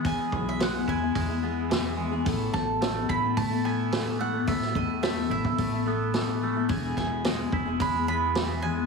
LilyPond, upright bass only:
\new Staff \with { instrumentName = "Upright bass" } { \clef bass \time 4/4 \key e \major \tempo 4 = 108 e8 b,,4 e,8 e,2 | a,,8 a,,4 a,,8 a,2 | a,8 e,4 a,,8 a,,2 | e,,8 e,,4 e,,8 e,2 | }